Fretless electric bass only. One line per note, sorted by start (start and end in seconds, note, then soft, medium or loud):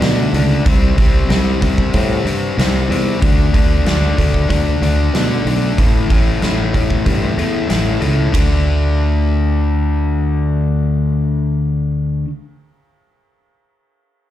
0.00 0.27 B2 medium
0.33 0.59 C#2 medium
0.66 0.92 C2 medium
0.98 1.24 C2 medium
1.29 1.82 C2 medium
1.94 2.20 A2 medium
2.25 2.51 G2 medium
2.58 2.84 C2 medium
2.89 3.15 E2 medium
3.23 3.48 D2 medium
3.54 3.80 D2 medium
3.85 4.12 D2 medium
4.18 4.44 D2 medium
4.50 4.76 D2 medium
4.81 5.08 D2 medium
5.14 5.40 B2 medium
5.45 5.72 B1 medium
5.78 6.04 A1 medium
6.10 6.36 A1 medium
6.43 6.95 A1 medium
7.06 7.32 G2 medium
7.37 7.63 E2 medium
7.70 7.96 A1 medium
8.01 8.27 C#2 medium
8.34 12.23 D2 medium